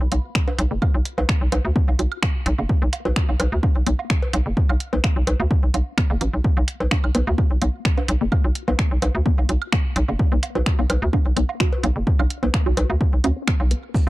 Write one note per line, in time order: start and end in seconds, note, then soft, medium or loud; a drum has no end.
0.01 0.08 B1 medium
0.12 0.19 B1 medium
0.12 0.18 B3 medium
0.12 closed hi-hat medium
0.12 low woodblock soft
0.35 finger snap medium
0.35 kick loud
0.48 0.53 D4 medium
0.48 cowbell medium
0.48 low woodblock soft
0.59 0.66 B1 loud
0.59 closed hi-hat medium
0.71 0.78 F#1 medium
0.71 0.76 B3 loud
0.82 kick loud
0.82 high woodblock medium
0.82 low woodblock soft
0.94 1.01 B1 loud
0.94 1.00 F#4 medium
1.05 closed hi-hat medium
1.18 1.25 B1 medium
1.18 1.23 B3 medium
1.18 cowbell medium
1.18 low woodblock soft
1.29 finger snap medium
1.29 kick loud
1.41 1.48 B1 medium
1.52 1.60 B1 medium
1.52 1.58 D4 medium
1.52 closed hi-hat medium
1.52 cowbell loud
1.52 low woodblock soft
1.65 1.71 D2 loud
1.76 1.82 B3 loud
1.76 kick loud
1.88 1.95 B1 medium
1.88 low woodblock soft
1.99 2.07 B1 medium
1.99 2.05 F#4 medium
1.99 closed hi-hat medium
2.12 high woodblock medium
2.23 2.29 B3 medium
2.23 finger snap loud
2.23 kick loud
2.23 low woodblock soft
2.46 2.54 B1 loud
2.46 closed hi-hat medium
2.58 2.65 F#1 medium
2.58 2.64 D4 medium
2.58 low woodblock soft
2.69 kick loud
2.82 2.89 B1 loud
2.82 2.87 B3 loud
2.93 closed hi-hat medium
2.93 low woodblock soft
3.05 3.12 B1 medium
3.05 3.11 F#4 medium
3.05 cowbell medium
3.16 finger snap medium
3.16 kick loud
3.29 3.36 B1 medium
3.29 3.34 B3 medium
3.29 low woodblock soft
3.40 3.48 B1 loud
3.40 closed hi-hat loud
3.40 cowbell loud
3.40 high woodblock medium
3.52 3.59 D2 loud
3.63 3.69 D4 medium
3.63 kick loud
3.63 low woodblock soft
3.76 3.82 B1 medium
3.87 3.94 B1 loud
3.87 3.93 B3 loud
3.87 closed hi-hat medium
3.99 low woodblock soft
4.10 4.16 F#4 medium
4.10 finger snap loud
4.10 kick loud
4.22 cowbell medium
4.33 4.41 B1 loud
4.33 4.40 B3 medium
4.33 closed hi-hat medium
4.33 low woodblock soft
4.46 4.53 F#1 medium
4.57 kick loud
4.69 4.76 B1 loud
4.69 4.75 D4 medium
4.69 high woodblock medium
4.69 low woodblock soft
4.80 closed hi-hat medium
4.93 5.00 B1 medium
4.93 4.98 B3 loud
4.93 cowbell medium
5.04 finger snap medium
5.04 kick loud
5.04 low woodblock soft
5.16 5.23 B1 medium
5.16 5.22 F#4 medium
5.27 5.35 B1 medium
5.27 closed hi-hat medium
5.27 cowbell medium
5.40 5.46 D2 loud
5.40 5.45 B3 medium
5.40 low woodblock soft
5.51 kick loud
5.63 5.70 B1 medium
5.74 5.82 B1 medium
5.74 5.80 D4 medium
5.74 closed hi-hat medium
5.74 low woodblock soft
5.98 6.04 B3 loud
5.98 finger snap medium
5.98 kick loud
5.98 high woodblock medium
6.10 6.17 F#1 loud
6.10 low woodblock soft
6.21 6.29 A1 medium
6.21 6.27 F#4 medium
6.21 closed hi-hat medium
6.34 6.40 B1 medium
6.44 kick loud
6.57 6.64 B1 loud
6.57 6.62 B3 medium
6.57 low woodblock soft
6.68 closed hi-hat medium
6.80 6.87 B1 medium
6.80 cowbell medium
6.91 6.98 D4 medium
6.91 finger snap medium
6.91 kick loud
6.91 low woodblock soft
7.04 7.11 B1 medium
7.04 high woodblock medium
7.15 7.22 B1 medium
7.15 7.21 B3 loud
7.15 closed hi-hat medium
7.15 cowbell medium
7.27 7.34 D2 loud
7.27 low woodblock soft
7.38 7.44 F#4 medium
7.38 kick loud
7.51 7.57 B1 medium
7.62 7.69 B1 medium
7.62 7.68 B3 medium
7.62 closed hi-hat medium
7.62 low woodblock soft
7.85 finger snap medium
7.85 kick loud
7.98 8.03 D4 medium
7.98 cowbell medium
7.98 low woodblock soft
8.08 8.16 B1 loud
8.08 closed hi-hat medium
8.21 8.28 F#1 medium
8.21 8.26 B3 loud
8.32 kick loud
8.32 high woodblock medium
8.32 low woodblock soft
8.44 8.51 B1 medium
8.44 8.50 F#4 medium
8.55 closed hi-hat medium
8.68 8.75 B1 medium
8.68 8.73 B3 medium
8.68 cowbell medium
8.68 low woodblock soft
8.79 finger snap medium
8.79 kick loud
8.91 8.98 B1 medium
9.02 9.10 B1 medium
9.02 9.08 D4 medium
9.02 closed hi-hat medium
9.02 cowbell medium
9.02 low woodblock soft
9.15 9.21 D2 loud
9.26 9.32 B3 loud
9.26 kick loud
9.38 9.45 B1 medium
9.38 low woodblock soft
9.49 9.57 B1 medium
9.49 9.55 F#4 medium
9.49 closed hi-hat medium
9.62 high woodblock medium
9.72 9.79 B3 medium
9.72 finger snap medium
9.72 kick loud
9.72 low woodblock soft
9.96 10.04 B1 loud
9.96 closed hi-hat medium
10.08 10.15 F#1 medium
10.08 10.14 D4 medium
10.08 low woodblock soft
10.19 kick loud
10.32 10.39 B1 loud
10.32 10.37 B3 loud
10.43 closed hi-hat medium
10.43 low woodblock soft
10.55 10.62 B1 medium
10.55 10.61 F#4 medium
10.55 cowbell medium
10.66 finger snap medium
10.66 kick loud
10.79 10.86 B1 medium
10.79 10.84 B3 medium
10.79 low woodblock soft
10.90 10.97 B1 medium
10.90 closed hi-hat medium
10.90 cowbell medium
10.90 high woodblock medium
11.02 11.09 D2 loud
11.13 11.19 D4 medium
11.13 kick loud
11.13 low woodblock soft
11.26 11.32 B1 medium
11.37 11.44 B1 medium
11.37 11.43 B3 loud
11.37 closed hi-hat medium
11.49 low woodblock soft
11.60 11.66 F#4 medium
11.60 finger snap medium
11.60 kick loud
11.73 cowbell medium
11.83 11.91 B1 loud
11.83 11.90 B3 medium
11.83 closed hi-hat medium
11.83 low woodblock soft
11.96 12.03 F#1 medium
12.07 kick loud
12.19 12.26 B1 loud
12.19 12.25 D4 medium
12.19 high woodblock medium
12.19 low woodblock soft
12.30 closed hi-hat medium
12.43 12.50 B1 medium
12.43 12.48 B3 loud
12.43 cowbell medium
12.54 finger snap medium
12.54 kick loud
12.54 low woodblock soft
12.66 12.73 B1 medium
12.66 12.72 F#4 medium
12.77 12.85 B1 loud
12.77 closed hi-hat medium
12.77 cowbell medium
12.90 12.96 D2 loud
12.90 12.95 B3 medium
12.90 low woodblock soft
13.01 kick loud
13.13 13.20 B1 medium
13.24 13.32 D2 medium
13.24 13.33 C#4 loud
13.24 closed hi-hat medium
13.24 low woodblock soft
13.36 13.40 C#4 medium
13.47 13.54 B3 medium
13.47 finger snap medium
13.47 kick loud
13.47 high woodblock medium
13.60 13.74 B1 medium
13.60 low woodblock soft
13.71 13.80 B3 medium
13.71 closed hi-hat medium
13.94 kick loud
13.94 maracas medium